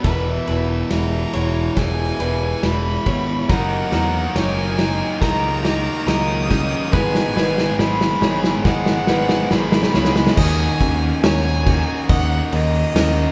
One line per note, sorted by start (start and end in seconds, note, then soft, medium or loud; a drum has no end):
0.00 0.46 E2 medium
0.00 0.47 B2 medium
0.00 0.47 E3 medium
0.00 3.45 G#3 medium
0.00 3.46 B3 soft
0.04 0.38 E1 medium
0.04 2.20 E2 medium
0.04 3.46 E4 medium
0.04 0.46 B4 medium
0.04 0.93 E5 medium
0.04 kick medium
0.04 snare medium
0.04 ride medium
0.47 0.82 E1 medium
0.47 0.89 E2 medium
0.47 0.90 B2 medium
0.47 0.90 E3 medium
0.47 1.33 B4 medium
0.47 ride medium
0.90 1.24 E1 medium
0.90 1.33 E2 medium
0.90 1.33 B2 medium
0.90 1.33 E3 medium
0.90 2.62 G#3 medium
0.90 1.76 A#5 medium
0.90 snare medium
0.90 ride medium
1.33 1.68 E1 medium
1.33 1.76 E2 medium
1.33 1.76 B2 medium
1.33 1.76 E3 medium
1.33 2.19 E4 medium
1.33 2.20 C#5 medium
1.33 ride medium
1.77 2.11 E1 medium
1.77 2.19 E2 medium
1.77 2.19 B2 medium
1.77 2.19 E3 loud
1.77 3.50 G#4 medium
1.77 2.66 G#5 medium
1.77 kick medium
1.77 snare medium
1.77 ride medium
2.20 2.53 E1 medium
2.20 2.61 E2 medium
2.20 2.62 B2 medium
2.20 2.63 E3 medium
2.20 3.49 E4 medium
2.20 3.06 B4 medium
2.20 ride medium
2.63 2.97 E1 medium
2.63 3.05 E2 medium
2.63 3.05 B2 medium
2.63 3.05 E3 medium
2.63 3.49 G#3 medium
2.63 3.52 B5 loud
2.63 snare medium
2.63 ride medium
3.06 3.40 G#1 medium
3.06 3.47 E2 medium
3.06 3.47 B2 medium
3.06 3.47 E3 medium
3.06 3.50 B3 medium
3.06 3.49 C#5 medium
3.06 kick medium
3.06 ride medium
3.49 3.83 F#1 medium
3.49 3.91 D#3 medium
3.49 6.90 F#3 medium
3.49 3.91 F#3 medium
3.49 4.35 F#3 medium
3.49 3.91 A#3 medium
3.49 6.90 C#4 medium
3.49 10.34 D#4 medium
3.49 3.93 D#4 loud
3.49 3.92 D#4 loud
3.49 4.35 A#4 medium
3.49 3.92 A#4 loud
3.49 4.37 F#5 medium
3.49 kick loud
3.49 snare medium
3.49 ride medium
3.91 4.25 E2 medium
3.91 4.34 D#3 medium
3.91 4.34 F#3 medium
3.91 4.34 A#3 medium
3.91 4.35 D#4 medium
3.91 4.36 D#4 medium
3.91 4.36 A#4 medium
3.91 snare medium
3.91 ride medium
4.35 5.02 F#1 medium
4.35 4.76 D#3 medium
4.35 4.78 F#3 medium
4.35 6.08 F#3 medium
4.35 4.78 A#3 loud
4.35 4.77 A#3 medium
4.35 4.79 D#4 loud
4.35 4.78 D#4 loud
4.35 4.79 A#4 loud
4.35 5.21 C#5 medium
4.35 5.22 G#5 loud
4.35 snare medium
4.35 ride medium
4.77 5.20 D#3 medium
4.77 5.21 F#3 medium
4.77 5.20 A#3 medium
4.77 5.21 A#3 medium
4.77 5.21 D#4 medium
4.77 5.65 D#4 medium
4.77 5.22 D#4 medium
4.77 5.22 A#4 medium
4.77 snare medium
4.77 ride medium
5.21 5.88 C#2 medium
5.21 5.62 D#3 medium
5.21 5.63 F#3 medium
5.21 5.63 A#3 medium
5.21 5.64 D#4 loud
5.21 5.64 D#4 medium
5.21 6.06 A#4 medium
5.21 6.94 A#4 medium
5.21 5.64 A#4 loud
5.21 6.08 A#5 medium
5.21 kick medium
5.21 snare medium
5.21 ride medium
5.63 6.05 D#3 medium
5.63 6.07 F#3 medium
5.63 6.06 A#3 medium
5.63 6.07 D#4 medium
5.63 6.08 D#4 medium
5.63 8.22 D#4 medium
5.63 6.07 A#4 loud
5.63 snare medium
5.63 ride medium
6.07 6.74 C#2 medium
6.07 6.49 D#3 medium
6.07 6.49 F#3 medium
6.07 6.97 F#3 medium
6.07 6.49 A#3 medium
6.07 6.49 A#3 loud
6.07 6.50 D#4 medium
6.07 6.50 D#4 loud
6.07 6.93 A#4 medium
6.07 6.50 A#4 medium
6.07 6.94 D#6 loud
6.07 snare medium
6.07 ride medium
6.49 6.91 D#3 medium
6.49 6.91 F#3 medium
6.49 6.91 A#3 medium
6.49 6.94 C#4 medium
6.49 6.93 D#4 medium
6.49 10.01 D#4 loud
6.49 6.91 A#4 medium
6.49 kick medium
6.49 snare medium
6.49 ride medium
6.92 7.27 G#1 loud
6.92 7.35 G#2 loud
6.92 9.09 G#2 medium
6.92 7.35 D#3 loud
6.92 7.35 G#3 medium
6.92 10.35 G#3 medium
6.92 7.36 G#3 loud
6.92 7.35 B3 loud
6.92 7.36 D#4 medium
6.92 10.34 F#4 medium
6.92 7.36 G#4 loud
6.92 7.35 B4 loud
6.92 10.35 B4 medium
6.92 7.79 G#5 loud
6.92 kick loud
6.92 snare loud
7.15 snare medium
7.36 7.69 G#1 loud
7.36 7.78 G#2 medium
7.36 7.78 D#3 medium
7.36 7.76 G#3 medium
7.36 7.79 G#3 medium
7.36 7.77 B3 medium
7.36 7.78 D#4 medium
7.36 7.78 G#4 medium
7.36 8.22 B4 medium
7.36 snare medium
7.58 snare medium
7.78 8.12 G#1 medium
7.78 8.21 G#2 loud
7.78 8.22 D#3 medium
7.78 9.51 F#3 medium
7.78 8.20 G#3 loud
7.78 8.22 G#3 loud
7.78 8.20 B3 medium
7.78 8.21 D#4 loud
7.78 8.22 G#4 loud
7.78 8.61 B5 loud
7.78 snare loud
8.01 snare loud
8.21 8.55 G#1 medium
8.21 8.64 G#2 medium
8.21 8.64 D#3 medium
8.21 8.63 G#3 medium
8.21 8.65 G#3 medium
8.21 8.63 B3 medium
8.21 8.64 D#4 medium
8.21 9.07 D#4 medium
8.21 8.64 G#4 medium
8.21 9.08 C#5 medium
8.21 snare loud
8.44 snare loud
8.64 8.99 G#1 loud
8.64 9.07 G#2 medium
8.64 9.07 D#3 loud
8.64 9.07 G#3 loud
8.64 9.07 B3 loud
8.64 9.08 D#4 loud
8.64 9.08 G#4 loud
8.64 10.38 B4 medium
8.64 9.53 F#5 loud
8.64 kick medium
8.64 snare loud
8.86 snare loud
9.07 9.42 G#1 medium
9.07 9.50 G#2 medium
9.07 9.50 D#3 loud
9.07 9.49 G#3 medium
9.07 9.51 G#3 medium
9.07 9.50 B3 loud
9.07 10.38 D#4 medium
9.07 9.51 D#4 medium
9.07 9.51 G#4 medium
9.07 9.93 B4 medium
9.07 snare loud
9.29 snare loud
9.51 9.85 G#1 medium
9.51 9.93 G#2 medium
9.51 9.94 D#3 medium
9.51 10.38 F#3 medium
9.51 9.93 G#3 loud
9.51 9.94 G#3 medium
9.51 9.94 B3 loud
9.51 9.94 D#4 loud
9.51 9.95 G#4 loud
9.51 10.37 B5 loud
9.51 snare loud
9.72 snare loud
9.83 snare loud
9.94 10.28 C#2 loud
9.94 10.35 G#2 loud
9.94 10.35 D#3 loud
9.94 10.35 G#3 medium
9.94 10.35 G#3 loud
9.94 10.38 B3 medium
9.94 10.35 B3 medium
9.94 10.35 D#4 loud
9.94 10.36 G#4 loud
9.94 10.36 C#5 medium
9.94 snare loud
10.05 snare loud
10.16 snare loud
10.27 snare loud
10.37 10.67 D#2 loud
10.37 11.64 D#3 medium
10.37 12.53 D#3 medium
10.37 11.65 A#3 loud
10.37 13.32 C#4 medium
10.37 11.65 D#4 loud
10.37 13.32 F#4 medium
10.37 11.65 F#4 loud
10.37 11.23 D#5 loud
10.37 11.20 G#5 loud
10.37 kick loud
10.37 crash loud
10.37 crash medium
10.81 11.10 D#2 loud
10.81 11.66 C#4 medium
10.81 kick medium
10.81 crash medium
11.23 11.83 D#2 medium
11.23 12.52 A#4 medium
11.23 12.09 C#5 medium
11.23 12.06 G#5 loud
11.23 snare loud
11.23 crash medium
11.66 12.94 D#3 medium
11.66 12.94 A#3 medium
11.66 12.94 C#4 medium
11.66 12.94 D#4 medium
11.66 12.93 F#4 medium
11.66 kick medium
11.66 crash medium
12.09 12.39 D#2 loud
12.09 13.32 D#4 medium
12.09 12.96 D#5 medium
12.09 12.50 F#5 medium
12.09 kick loud
12.09 crash medium
12.52 12.82 D#2 loud
12.52 13.32 A#4 medium
12.52 13.32 D#5 loud
12.52 crash medium
12.95 13.25 D#2 medium
12.95 13.32 D#3 medium
12.95 13.32 A#3 medium
12.95 13.32 C#4 medium
12.95 13.32 D#4 medium
12.95 13.32 F#4 medium
12.95 13.32 A#4 medium
12.95 snare loud
12.95 crash medium